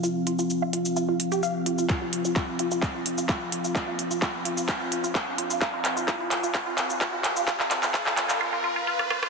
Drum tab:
HH |--o---o---o---o-|--o---o---o---o-|--o---o---o---o-|--o---o---o---o-|
SH |x--xx--xx--xx--x|x--xx--xx--xx--x|x--xx--xx--xx--x|x--xx--xx--xx--x|
CP |----------------|x---x---x---x---|x---x---x---x---|x-x-x-x-x-x-x-x-|
SD |----------------|----------------|----------------|----------------|
BD |----------------|o---o---o---o---|o---o---o---o---|o---o---o---o---|

HH |--o---o---------|
SH |x--xx--x--------|
CP |xxxxxxxx--------|
SD |-------------rrr|
BD |o---o-----------|